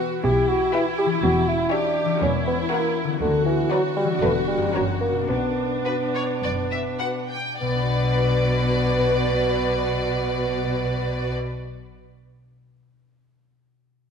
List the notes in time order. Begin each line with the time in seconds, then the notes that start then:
Already playing: E3 B3 E4 F#4 G4 B4 E5
0.24 B1 B2 E4 G4
0.49 F#4
0.74 E4 G4 B4 E5
0.98 G4
1.06 E3
1.10 C#4
1.15 E4
1.19 E2 G4
1.23 E1 F#4
1.48 E4
1.70 D4 G4 C#5 E5
2.05 E3
2.10 C#4
2.14 F#4
2.19 E1 E4 A#4
2.23 E2 C#4
2.47 B3
2.70 A#3 F#4 A#4 F#5
3.04 D3
3.08 B3
3.13 F#4
3.17 D2 D3 F#4 B4
3.21 D2
3.46 E3
3.70 F#3 F#4 B4 D5
3.96 G3
4.04 E3
4.09 B3
4.13 D4
4.18 A3 B4
4.22 E1 E2 B4 D5
4.47 G3
4.57 F#2
4.62 A#3
4.67 C#4
4.71 F#1 F#3 F#4 A#4 C#5
4.76 F#2
5.01 A#3
5.12 B2
5.17 B3
5.21 D4
5.26 B1 B2 B3 F#4
5.31 D4
5.85 F#4 B4
6.15 C#5
6.43 F#1 F#2 D5
6.71 E5
6.99 F#4 B4 F#5
7.29 G5
7.60 B1 B2 B3 F#4 B4 D5
7.68 B3
7.75 D4
7.82 F#4
7.89 D5